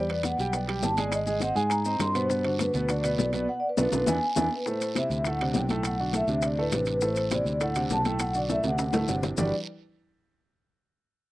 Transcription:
Already playing: E2 D5
0.10 B3 B4 D5, high conga, high timbale
0.23 F#5, high bongo, high conga, high timbale, low timbale, short guiro, maracas
0.38 B1 G3 G4 G5, high bongo, high conga, short guiro, maracas
0.53 B3 B4 D5 G5, high bongo, high conga, high timbale, long guiro, maracas
0.68 G3 G4 G5, high bongo, high conga, high timbale
0.82 G#1 A5, high bongo, low bongo, high conga, low timbale, short guiro, maracas
0.97 G#3 G#4 D5 G#5, high bongo, high conga, high timbale, short guiro, maracas
1.12 D#5, high bongo, high conga, high timbale, long guiro, maracas
1.27 G#3 G#4 G#5, high conga, maracas
1.40 C4 C5 D#5 F#5, high bongo, high conga, high timbale, low timbale, short guiro, maracas
1.55 G#2 G#3 G#4 G#5, high bongo, short guiro, maracas
1.70 A#5, high bongo, high conga, high timbale, long guiro, maracas
1.85 C4 C5 D#5, high bongo, high conga, maracas
1.99 G2 C6, high bongo, low bongo, high conga, high timbale, low timbale, short guiro, maracas
2.15 B2 B3 B4 C5, high bongo, high conga, high timbale, short guiro, maracas
2.30 B2 B3 B4, high bongo, high conga, long guiro, maracas
2.44 D3 D4 F#4, high conga, high timbale
2.59 B4, high bongo, high conga, high timbale, low timbale, short guiro, maracas
2.74 D2 B2 B3 B4, high bongo, high conga, short guiro, maracas
2.89 D3 D4 F#4 D5, high bongo, high conga, high timbale, long guiro, maracas
3.04 B2 B3 B4, high bongo, high conga, high timbale, maracas
3.18 B1, high bongo, low bongo, high conga, low timbale, short guiro, maracas
3.33 B2 B3 B4, high bongo, high conga, high timbale, short guiro, maracas
3.49 F#5
3.60 D5
3.69 B4
3.77 B1 B3 D4 F4 B4, low bongo, high conga, high timbale, long guiro, maracas
3.92 B1 B3 D4 F4, low bongo, high conga, high timbale, long guiro, maracas
4.07 E2 B3 D4 E4 G#5, low bongo, high conga, high timbale, long guiro, maracas
4.36 E2 B3 D4 E4, low bongo, high conga, high timbale, maracas
4.55 B4
4.66 A2 A3 A4 C5, high bongo, high conga, long guiro, maracas
4.81 high conga, high timbale, maracas
4.95 C3 C4 E4 E5, high bongo, high conga, high timbale, low timbale, short guiro, maracas
5.10 D2, high bongo, high conga, short guiro, maracas
5.25 A2 A3 A4 F#5, high bongo, high conga, high timbale, long guiro, maracas
5.39 C3 C4 D4, high bongo, high conga, high timbale
5.54 B1 G5, high bongo, low bongo, high conga, low timbale, short guiro, maracas
5.69 A2 A3 A4, high bongo, high conga, high timbale, short guiro, maracas
5.83 F#5, high bongo, high conga, high timbale, long guiro, maracas
5.99 D3 D4 F#4, high conga
6.13 A2 A3 A4 E5, high bongo, high conga, high timbale, low timbale, short guiro, maracas
6.28 D2 C3 C4 D4, high bongo, short guiro, maracas
6.42 high bongo, high conga, high timbale, long guiro, maracas
6.46 D5
6.58 A2 A3 A4 B4, high bongo, high conga
6.72 A1 C3 C4 D4, high bongo, low bongo, high conga, high timbale, low timbale, short guiro, maracas
6.86 high bongo, high conga, high timbale, short guiro, maracas
6.91 B4
7.01 A2 A3 A4, high bongo, high conga, long guiro, maracas
7.05 C5
7.16 high conga, high timbale, maracas
7.31 C3 C4 E4 D5, high bongo, high conga, high timbale, low timbale, short guiro, maracas
7.45 D2, high bongo, high conga, short guiro, maracas
7.60 A2 A3 A4 F#5, high bongo, high conga, high timbale, long guiro, maracas
7.75 C3 C4 D4, high bongo, high conga, high timbale, maracas
7.90 B1 A5, high bongo, low bongo, high conga, low timbale, short guiro, maracas
8.05 A2 A3 A4 G5, high bongo, high conga, high timbale, short guiro, maracas
8.19 F#5, high bongo, high conga, high timbale, long guiro, maracas
8.34 D3 D4 F#4 D5, high conga, maracas
8.49 A2 A3 A4 E5, high bongo, high conga, high timbale, short guiro, maracas
8.64 D2 C3 C4 D4 F#5, high bongo, high timbale, short guiro, maracas
8.78 high bongo, high conga, high timbale, long guiro, maracas
8.93 A2 A3 A4, high bongo, high conga, low timbale, maracas
9.08 G1 C3 C4 D4, high bongo, high conga, low timbale, short guiro, maracas
9.23 low bongo, high conga, low timbale, short guiro, maracas
9.37 G1 G3 D4 F#4 G4 B4 D5, low bongo, low conga, low timbale, long guiro, maracas

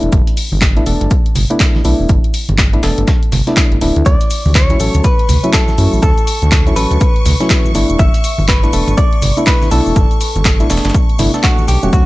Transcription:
Already playing: A3 B3 D4 E4
0.03 E1, closed hi-hat
0.12 G1, kick, closed hi-hat, shaker
0.27 closed hi-hat
0.37 open hi-hat, shaker
0.52 G1, high conga
0.62 kick, snare, clap, closed hi-hat, shaker
0.76 A3 B3 D4 E4, closed hi-hat
0.86 E1 A3 B3 D4 A4, open hi-hat, shaker
1.01 G1, closed hi-hat, muted conga
1.11 kick, closed hi-hat, shaker
1.26 closed hi-hat
1.35 G1, snare, open hi-hat, low conga, shaker
1.50 A3 B3 D4 E4, closed hi-hat
1.60 kick, snare, clap, closed hi-hat, shaker
1.75 snare, high conga
1.84 B1 A3 B3 D4 E4, open hi-hat, shaker
2.00 E1
2.09 G1, kick, closed hi-hat, shaker
2.24 closed hi-hat
2.34 open hi-hat, shaker
2.49 G1, closed hi-hat, high conga
2.58 kick, snare, clap, closed hi-hat, shaker
2.73 A3 B3 D4 E4, closed hi-hat
2.83 E1 A3 B3 D4 A4, snare, open hi-hat, shaker
2.98 G1, closed hi-hat, muted conga
3.08 kick, snare, closed hi-hat, shaker
3.23 closed hi-hat
3.32 G1, snare, open hi-hat, low conga, shaker
3.47 A3 B3 D4 E4, snare, closed hi-hat, muted conga
3.57 kick, snare, clap, closed hi-hat, shaker
3.71 G1, closed hi-hat, high conga
3.81 D1 A3 B3 D4 E4, snare, open hi-hat, shaker
3.96 D2, closed hi-hat
4.06 D2 D5 C#6, kick, closed hi-hat, cabasa, shaker
4.20 closed hi-hat, cabasa
4.30 open hi-hat, cabasa, shaker
4.45 D2, high conga, cabasa
4.55 C#5, kick, snare, clap, closed hi-hat, cabasa, shaker
4.70 F#3 A3 C#4 E4, closed hi-hat, cabasa
4.80 A1 F#3 A3 C#4 A4, open hi-hat, cabasa, shaker
4.94 D2, closed hi-hat, muted conga, cabasa
5.04 B4, kick, closed hi-hat, cabasa, shaker
5.19 closed hi-hat
5.29 D2, snare, open hi-hat, low conga, cabasa, shaker
5.44 F#3 A3 C#4 E4, closed hi-hat, cabasa
5.53 A4, kick, snare, clap, closed hi-hat, cabasa, shaker
5.68 snare, high conga, cabasa
5.78 F#2 F#3 A3 C#4 E4, open hi-hat, cabasa, shaker
5.93 A1, cabasa
6.02 D2 A4, kick, closed hi-hat, cabasa, shaker
6.18 closed hi-hat, cabasa
6.27 open hi-hat, cabasa, shaker
6.42 D2, closed hi-hat, high conga, cabasa
6.52 kick, snare, clap, closed hi-hat, cabasa, shaker
6.66 F#3 A3 C#4 E4, closed hi-hat, cabasa
6.76 A1 F#3 A3 C#4 A4 B4, open hi-hat, cabasa, shaker
6.91 D2, closed hi-hat, muted conga, cabasa
7.01 kick, closed hi-hat, cabasa, shaker
7.16 closed hi-hat
7.25 D2, snare, open hi-hat, low conga, cabasa, shaker
7.40 F#3 A3 C#4 E4, snare, closed hi-hat, muted conga, cabasa
7.50 kick, snare, clap, closed hi-hat, cabasa, shaker
7.64 high conga, cabasa
7.75 G1 A3 B3 D4 E4, snare, open hi-hat, cabasa, shaker
7.90 E1, closed hi-hat, cabasa
7.99 G1 E5, kick, closed hi-hat, cabasa, shaker
8.14 closed hi-hat, cabasa
8.24 open hi-hat, cabasa, shaker
8.38 G1, high conga, cabasa
8.48 B4, kick, snare, clap, closed hi-hat, cabasa, shaker
8.63 A3 B3 D4 E4, closed hi-hat, cabasa
8.73 E1 A3 B3 D4 A4, open hi-hat, cabasa, shaker
8.88 G1, closed hi-hat, muted conga, cabasa
8.97 D5, kick, closed hi-hat, cabasa, shaker
9.13 closed hi-hat
9.22 G1, snare, open hi-hat, low conga, cabasa, shaker
9.37 A3 B3 D4 E4, closed hi-hat, cabasa
9.46 B4, kick, snare, clap, closed hi-hat, cabasa, shaker
9.62 snare, high conga, cabasa
9.71 B1 A3 B3 D4 E4 A4, open hi-hat, cabasa, shaker
9.86 E1, cabasa
9.96 G1, kick, closed hi-hat, cabasa, shaker
10.11 closed hi-hat, cabasa
10.21 open hi-hat, cabasa, shaker
10.36 G1, closed hi-hat, high conga, cabasa
10.45 kick, snare, clap, closed hi-hat, cabasa, shaker
10.60 A3 B3 D4 E4, closed hi-hat, cabasa
10.70 E1 A3 B3 D4 A4, snare, open hi-hat, cabasa, shaker
10.77 snare, shaker
10.84 G1, snare, closed hi-hat, muted conga, cabasa, shaker
10.90 snare, shaker
10.94 kick, closed hi-hat, cabasa, shaker
11.09 closed hi-hat
11.18 G1 A3 B3 D4 E4, snare, open hi-hat, low conga, cabasa, shaker
11.34 A3 B3 D4 A4, snare, closed hi-hat, muted conga, cabasa
11.44 F#4, kick, snare, clap, closed hi-hat, cabasa, shaker
11.58 high conga, cabasa
11.68 B1 G4, snare, open hi-hat, cabasa, shaker
11.83 E1 F#3 A3 C#4 F#4, closed hi-hat, cabasa
11.93 D2 F#4 D6, kick, closed hi-hat, cabasa, shaker

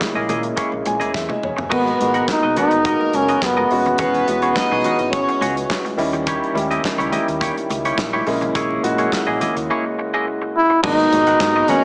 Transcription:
Already playing: C#3 G#3 A#3 E4
0.01 kick, snare, clap, muted conga, high conga
0.15 A#1 A#3 E4 G#4 D#5, muted conga
0.29 A#2 A#3 E4 G#4 D#5, closed hi-hat, high conga, low conga
0.43 muted clean electric guitar stroke, closed hi-hat
0.56 A#3 E4 G#4 C#5, kick, closed hi-hat
0.72 A#1, muted clean electric guitar stroke, muted conga
0.85 A#1 G#5, muted clean electric guitar stroke, closed hi-hat, high conga
1.00 E1 A#3 E4 G#4 D#5, closed hi-hat
1.13 E2 E5, muted clean electric guitar stroke, kick, snare
1.29 D#5, muted clean electric guitar stroke, high tom, high conga
1.43 E1 C#5, mid tom
1.57 F#1, muted clean electric guitar stroke, floor tom
1.70 G#1 B2 G#3 A#3 B3 F#4 A#4 B4 D#5, kick, crash, muted conga, low conga
1.87 closed hi-hat, muted conga
1.99 G#1 B2 G#3 A#3 F#4 A#4, muted clean electric guitar stroke, closed hi-hat, high conga
2.14 B3 F#4 A#4 F#5, closed hi-hat
2.28 D#4, muted clean electric guitar stroke, kick, snare, clap, high conga
2.43 B1 B3 F#4 A#4 D#5
2.56 B3 D#4 F#4 A#4 B4 F#5, closed hi-hat, high conga, low conga
2.71 G#1, muted clean electric guitar stroke, closed hi-hat
2.84 A#3 B3 F#4 A#4 D#5, kick, closed hi-hat, muted conga
3.01 muted clean electric guitar stroke, muted conga
3.13 F#1 C#4, muted clean electric guitar stroke, closed hi-hat, high conga
3.28 B3 F#4 A#4 D#5, closed hi-hat
3.42 F#1 B3, muted clean electric guitar stroke, kick, snare, clap
3.57 B3 F#4 A#4 D#5, muted conga, high conga
3.70 E1 E3 G#3 C#4 F#4, muted clean electric guitar stroke, open hi-hat
3.86 muted clean electric guitar stroke, closed hi-hat, low conga
3.98 E1 B3 C#4 F#4 G#4 B4 C#5, kick, closed hi-hat, muted conga, low conga
4.14 closed hi-hat
4.27 E1 E3 G#3 C#4 F#4, muted clean electric guitar stroke, closed hi-hat, high conga
4.42 C#4 F#4 G#4 C#5, closed hi-hat
4.55 D#4 D#5, kick, snare, clap, muted conga, high conga
4.71 B1 C#4 F#4 G#4 D#5, muted conga
4.84 C#4 F#4 G#4 D#5, closed hi-hat, high conga, low conga
4.99 G#1, muted clean electric guitar stroke, closed hi-hat
5.13 C#4 C#5, muted clean electric guitar stroke, kick, closed hi-hat, muted conga
5.29 muted clean electric guitar stroke, closed hi-hat
5.41 C#2 C#4 F#4 G#4 C#5, closed hi-hat, high conga
5.56 muted clean electric guitar stroke, closed hi-hat
5.70 muted clean electric guitar stroke, kick, snare, clap
5.85 muted clean electric guitar stroke, closed hi-hat, high conga
5.97 D#2 D#3 G3 C#4 E4, open hi-hat
6.13 muted clean electric guitar stroke, closed hi-hat, low conga
6.26 A#3 E4 G4 C#5, kick, closed hi-hat, muted conga, low conga
6.44 closed hi-hat
6.54 D#2 D#3 G3 C#4 E4, muted clean electric guitar stroke, closed hi-hat, high conga
6.71 A#3 E4 G4 D#5, closed hi-hat
6.84 kick, snare, clap, high conga
6.98 C#2 A#3 E4 G4 C#5, closed hi-hat, muted conga
7.11 A#3 E4 G4 D#5, closed hi-hat, high conga, low conga
7.28 D#2, muted clean electric guitar stroke, closed hi-hat
7.41 A#3 E4 G4 C#5, kick, closed hi-hat, muted conga
7.56 muted clean electric guitar stroke, closed hi-hat, muted conga
7.70 C#2, muted clean electric guitar stroke, closed hi-hat, high conga
7.85 A#3 E4 G4 C#5, closed hi-hat
7.98 A#1, muted clean electric guitar stroke, kick, snare, clap, muted conga
8.13 A#3 E4 G4 C#5, high conga
8.26 A#1 C#3 G#3 A#3 E4, muted clean electric guitar stroke, open hi-hat
8.41 muted clean electric guitar stroke, closed hi-hat, low conga
8.55 A#1 A#3 E4 G#4 C#5, kick, closed hi-hat, low conga
8.71 muted conga
8.83 A#1 C#3 G#3 A#3 F#4, muted clean electric guitar stroke, closed hi-hat, high conga
8.98 A#3 E4 G#4 C#5, closed hi-hat
9.12 kick, snare, clap, muted conga, high conga
9.27 A#1 A#3 E4 G#4 D#5
9.40 A#3 E4 G#4 D#5, closed hi-hat, high conga, low conga
9.57 D#2, muted clean electric guitar stroke, closed hi-hat
9.70 A#3 E4 G#4 C#5
9.85 muted clean electric guitar stroke
9.99 muted clean electric guitar stroke
10.14 A#3 E4 G#4 D#5
10.27 muted clean electric guitar stroke
10.42 muted clean electric guitar stroke
10.57 E4
10.70 muted clean electric guitar stroke
10.83 G#1 B2 F#3 G#3 A#3 B3 D#4 F#4 A#4 D#5, kick, crash, muted conga, low conga
10.99 closed hi-hat
11.11 G#1 B2 F#3 G#3 A#3 D#4, muted clean electric guitar stroke, closed hi-hat, high conga
11.27 B3 F#4 A#4 F#5, closed hi-hat
11.40 G#2, kick, snare, clap, muted conga, high conga
11.56 B3 F#4 A#4 D#5
11.68 B2 F#3 G#3 A#3 B3 C#4 D#4 F#4 A#4 F#5, closed hi-hat, high conga, low conga

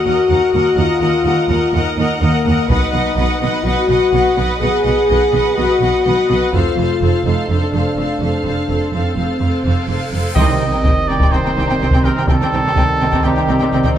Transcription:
Already playing: F#4
0.04 D#2 A#4 D#5 F#5
0.27 D#2 A#4 D#5 F#5
0.53 D#2 A#4 D#5 F#5
0.75 D#2 F4 A#4 D#5 F#5
1.00 D#2 A#4 D#5 F#5
1.24 D#2 A#4 D#5 F#5
1.49 D#2 A#4 D#5 F#5
1.73 D#2 D#4 A#4 D#5 F#5
1.97 D#2 A#4 D#5 F#5
2.21 D#2 A#3 A#4 D#5 F#5
2.45 D#2 A#4 D#5 F#5
2.69 B1 B2 D#4 B4 D#5 F#5, taiko
2.92 B1 B2 B4 D#5 F#5
3.16 B1 B2 B4 D#5 F#5
3.42 B1 B2 B4 D#5 F#5
3.64 B1 B2 F#4 B4 D#5 F#5
3.89 B1 B2 B4 D#5 F#5
4.13 B1 B2 B4 D#5 F#5
4.36 B1 B2 B4 D#5 F#5
4.58 B1 G#4 D#5 F#5
4.62 B2 B4
4.83 B1 B2 B4 D#5 F#5
5.06 B2 D#5 F#5
5.10 B1 B4
5.31 B1 B2 B4 D#5 F#5
5.54 B2 F#4 B4 D#5
5.58 B1 F#5
5.80 B1 B2 B4 D#5
5.84 F#5
6.03 B1 B2 B4 D#5 F#5
6.27 B1 B2 B4 D#5 F#5
6.52 F1 F2 F4 A4 C5 F5, taiko
6.76 F1 F2 A4 C5 F5
7.01 F1 F2 A4 C5 F5
7.24 F1 F2 D#4 A4 C5 F5
7.48 F1 F2 D4 A4 C5 F5
7.72 F1 F2 A4 C5 F5
7.97 F1 F2 A4 C5 F5
8.19 F1 F2 A4 C5 F5
8.42 F1 F2 D4 A4 C5, cymbal swell
8.47 F5
8.68 F1 F2 A4 C5 F5
8.93 F1 F2 C4 A4 C5 F5
9.17 F1 F2 A4 C5 F5
9.40 F1 F2 A4 C5 F5
9.64 F1 F2 A4 C5 F5
9.88 F1 F2 A4 C5 F5
10.12 F1 F2 A4 C5 F5
10.34 C2 C3 D#3 G3 C4 D#4 D#5 G5, taiko, sub drop
10.48 C3 C4 D#4 G5
10.59 C2 C3 C4 D#4 G5
10.71 C3 C4 D#4 G5
10.83 C2 C3 C4 D#4 G5, taiko
11.08 C2 C3 C4 D#4 D5 G5
11.19 C3 C4 D#4 G5, taiko
11.31 C2 C3 C4 D#4 C5 G5
11.44 C3 C4 D#4 G5
11.56 C2 C3 C4 D#4 G5
11.66 C4 D#4 G5
11.70 C3
11.80 C2 C3 C4 D#4 G5
11.91 C3 C4 D#4 G5, taiko
12.03 C2 C3 C4 D#4 A#4 G5
12.15 C3 C4 D#4 G5
12.27 C2 C3 C4 D#4 A4 G5, taiko
12.40 C3 C4 D#4 G5
12.52 C2 C3 C4 D#4 G5
12.65 C3 C4 D#4 G5
12.76 C2 C3 C4 D#4 G5, taiko
13.00 C2 C3 C4 D#4 G5
13.11 C3 C4 D#4 G5, taiko
13.23 C2 C3 C4 D#4 G4 G5
13.36 C3 C4 D#4 G5
13.48 C2 C3 C4 D#4 G5
13.59 C3 C4 D#4 G5
13.72 C2 C3 C4 D#4 G5
13.83 C3 C4 D#4 G5, taiko

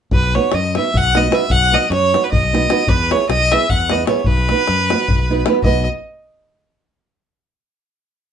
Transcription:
0.11 B1 B4, davul low
0.23 davul high
0.35 B3 D#4 F#4 B4 C#5, davul high
0.43 davul high
0.52 F#2 D#5, davul high
0.75 B3 D#4 F#4 B4 E5, davul high
0.85 davul high
0.94 B1 F#5, davul low
1.05 davul high
1.15 B3 D#4 F#4 B4 D#5, davul high
1.23 davul high
1.31 B3 D#4 F#4 B4 E5, davul high
1.50 B1 F#5, davul low
1.63 davul high
1.71 B3 D#4 F#4 B4 D#5, davul high
1.84 davul high
1.90 F#2 C#5, davul high
2.13 B3 D#4 F#4 B4, davul high
2.23 B4, davul high
2.31 B1 D#5, davul low
2.43 davul high
2.53 B3 D#4 F#4 B4, davul high
2.62 davul high
2.70 B3 D#4 F#4 B4, davul high
2.88 E2 B4, davul low
3.00 davul high
3.11 B3 E4 G#4 B4 C#5, davul high
3.20 davul high
3.29 B1 D#5, davul high
3.52 B3 E4 G#4 B4 E5, davul high
3.61 davul high
3.70 E2 F#5, davul low
3.80 davul high
3.90 B3 E4 G#4 B4 D#5, davul high
3.99 davul high
4.07 B3 E4 G#4 B4 C#5, davul high
4.19 C#5
4.24 B1 B4, davul low
4.37 davul high
4.49 B3 D#4 F#4 B4, davul high
4.58 davul high
4.67 F#2, davul high
4.79 davul high
4.90 B3 D#4 F#4 B4, davul high
5.00 davul high
5.08 B1, davul low
5.19 davul high
5.30 B3 D#4 F#4 B4
5.37 davul high
5.46 B3 D#4 F#4 B4, davul high
5.55 davul high
5.62 B1 B3 D#4 F#4 B4 D#5, davul low

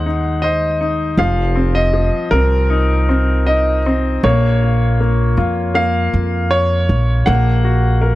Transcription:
Already playing: D#2 G#3 D#4 C5 F#5
0.06 D#4
0.42 C5 D#5
0.81 D#4
1.17 F1 F3 F5
1.56 C4
1.75 D#5
1.94 F3
2.31 C2 C4 A#4
2.70 D#4
3.09 C4
3.47 D#4 D#5
3.86 C4
4.23 A#1 A#3 C#5
4.63 F4
5.00 A#3
5.37 F2 F4
5.74 A#3 F5
6.13 F2
6.51 C#5
6.89 A#1
7.26 A#1 A#3 F#5
7.64 F#4
8.02 A#4

